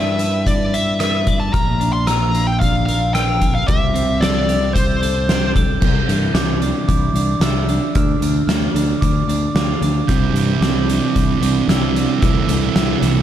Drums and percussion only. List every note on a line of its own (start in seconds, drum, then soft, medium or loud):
0.19 closed hi-hat soft
0.46 kick medium
0.46 closed hi-hat medium
0.74 closed hi-hat soft
1.00 cross-stick medium
1.00 closed hi-hat medium
1.27 kick medium
1.27 closed hi-hat soft
1.54 kick medium
1.54 closed hi-hat medium
1.81 closed hi-hat soft
2.07 cross-stick medium
2.07 closed hi-hat medium
2.35 closed hi-hat soft
2.61 kick medium
2.61 closed hi-hat medium
2.88 closed hi-hat soft
3.15 cross-stick medium
3.15 closed hi-hat medium
3.42 kick medium
3.42 closed hi-hat soft
3.68 kick medium
3.68 closed hi-hat medium
3.96 closed hi-hat medium
4.22 snare medium
4.22 closed hi-hat medium
4.49 closed hi-hat soft
4.76 kick medium
4.76 closed hi-hat medium
5.03 closed hi-hat medium
5.29 snare medium
5.29 closed hi-hat medium
5.56 kick medium
5.56 closed hi-hat soft
5.82 kick medium
5.82 crash medium
6.09 closed hi-hat soft
6.35 snare medium
6.35 closed hi-hat medium
6.62 closed hi-hat soft
6.89 kick medium
6.89 closed hi-hat medium
7.16 closed hi-hat medium
7.41 snare medium
7.41 closed hi-hat medium
7.69 closed hi-hat medium
7.95 kick medium
7.95 closed hi-hat medium
8.22 closed hi-hat medium
8.49 snare medium
8.49 closed hi-hat medium
8.76 closed hi-hat medium
9.02 kick medium
9.02 closed hi-hat medium
9.29 closed hi-hat medium
9.56 snare medium
9.56 closed hi-hat medium
9.82 closed hi-hat medium
10.09 kick medium
10.09 closed hi-hat medium
10.36 closed hi-hat medium
10.62 snare medium
10.62 closed hi-hat medium
10.89 closed hi-hat medium
11.16 kick medium
11.16 closed hi-hat medium
11.43 closed hi-hat medium
11.69 snare medium
11.69 closed hi-hat medium
11.96 closed hi-hat medium
12.22 kick medium
12.22 closed hi-hat medium
12.49 closed hi-hat medium
12.76 snare medium
12.76 closed hi-hat medium
13.03 closed hi-hat medium